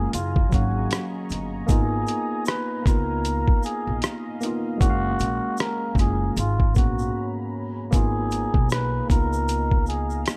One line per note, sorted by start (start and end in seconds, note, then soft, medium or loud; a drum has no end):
0.00 0.15 G#3 loud
0.00 0.15 A#3 loud
0.00 0.15 C#4 loud
0.00 0.14 F4 medium
0.00 0.10 G#4 medium
0.00 0.12 G#4 medium
0.00 0.15 F5 loud
0.00 1.66 G#5 medium
0.00 0.12 A#5 medium
0.13 0.46 F#1 loud
0.13 0.49 F4 medium
0.13 1.67 D#5 medium
0.13 4.77 A#5 medium
0.13 1.68 C#6 loud
0.13 closed hi-hat loud
0.13 shaker medium
0.36 kick medium
0.49 0.85 G#1 medium
0.49 1.57 F#3 medium
0.49 1.58 A#3 medium
0.49 1.59 C#4 medium
0.49 kick medium
0.49 shaker soft
0.53 1.11 F#4 medium
0.53 1.60 F5 medium
0.53 closed hi-hat medium
0.91 cross-stick loud
0.91 closed hi-hat medium
0.91 shaker medium
1.30 1.62 G1 medium
1.30 closed hi-hat medium
1.30 shaker soft
1.66 2.01 G#1 medium
1.66 2.74 A#3 loud
1.66 2.75 B3 loud
1.66 2.76 D#4 loud
1.66 2.43 G#4 medium
1.66 6.33 F5 medium
1.66 2.85 G#5 medium
1.66 kick loud
1.66 shaker medium
1.70 2.77 F4 loud
1.70 closed hi-hat medium
2.07 closed hi-hat medium
2.07 shaker soft
2.46 2.82 B4 medium
2.46 cross-stick loud
2.46 closed hi-hat medium
2.46 shaker medium
2.82 4.26 A#3 medium
2.82 4.27 B3 medium
2.82 4.28 D#4 medium
2.82 kick loud
2.86 3.50 C#2 medium
2.86 4.29 F4 medium
2.86 3.66 A#4 medium
2.86 4.79 D#5 medium
2.86 cross-stick soft
2.86 closed hi-hat medium
2.86 shaker medium
3.25 closed hi-hat medium
3.25 shaker medium
3.48 kick medium
3.63 3.99 G#4 medium
3.63 closed hi-hat medium
3.63 shaker medium
3.87 4.00 A#1 medium
4.02 cross-stick medium
4.02 closed hi-hat medium
4.02 shaker medium
4.40 4.77 A#3 medium
4.40 4.78 B3 medium
4.40 4.79 D#4 medium
4.40 closed hi-hat medium
4.40 shaker soft
4.46 4.80 F4 loud
4.78 5.13 F#1 loud
4.78 5.86 G#3 loud
4.78 5.87 A#3 medium
4.78 5.88 C#4 loud
4.78 5.55 F#4 loud
4.78 6.35 G#4 medium
4.78 6.35 G#5 medium
4.78 6.35 A#5 medium
4.78 kick loud
4.78 shaker medium
4.82 4.90 E4 medium
4.82 closed hi-hat medium
4.90 5.92 F5 loud
5.19 5.39 A#1 medium
5.19 closed hi-hat medium
5.19 shaker soft
5.57 5.94 A#4 medium
5.57 cross-stick loud
5.57 closed hi-hat medium
5.57 shaker medium
5.95 6.28 F#1 loud
5.95 6.35 G#3 medium
5.95 6.36 A#3 medium
5.95 6.37 C#4 medium
5.95 kick medium
5.95 shaker medium
5.99 6.38 F4 medium
5.99 6.34 G#4 medium
5.99 cross-stick soft
5.99 closed hi-hat medium
6.37 6.77 G#1 loud
6.37 6.73 F4 medium
6.37 7.91 C#5 medium
6.37 7.91 G#5 medium
6.37 7.91 A#5 medium
6.37 7.91 B5 medium
6.37 closed hi-hat loud
6.37 shaker medium
6.60 kick medium
6.73 7.08 A#1 medium
6.73 7.81 G#2 medium
6.73 7.82 A#3 medium
6.73 7.83 B3 medium
6.73 7.35 F#4 medium
6.73 kick medium
6.73 shaker soft
6.77 7.83 C#4 medium
6.77 7.84 F#4 medium
6.77 closed hi-hat medium
6.99 shaker soft
7.91 8.44 G#1 medium
7.91 8.98 A#3 loud
7.91 8.99 B3 medium
7.91 9.00 D#4 medium
7.91 9.08 G#4 medium
7.91 8.67 G#4 medium
7.91 9.08 D#5 medium
7.91 10.37 F5 medium
7.91 9.08 A#5 medium
7.91 kick loud
7.91 closed hi-hat medium
7.91 shaker medium
7.97 9.01 F4 loud
8.31 closed hi-hat medium
8.31 shaker soft
8.54 8.99 B1 medium
8.54 kick medium
8.70 9.06 B4 medium
8.70 cross-stick loud
8.70 closed hi-hat medium
8.70 shaker medium
9.07 10.23 C#2 medium
9.07 10.37 A#3 medium
9.07 10.37 B3 medium
9.07 10.37 D#4 medium
9.07 9.84 A#4 medium
9.07 10.37 D#5 medium
9.07 10.37 G#5 medium
9.07 10.37 A#5 medium
9.07 kick loud
9.07 shaker soft
9.11 10.37 F4 medium
9.11 closed hi-hat medium
9.33 shaker medium
9.48 closed hi-hat medium
9.48 shaker medium
9.71 kick medium
9.86 10.23 G#4 medium
9.86 closed hi-hat medium
9.86 shaker soft
10.10 shaker soft
10.26 cross-stick medium
10.26 closed hi-hat medium
10.26 shaker medium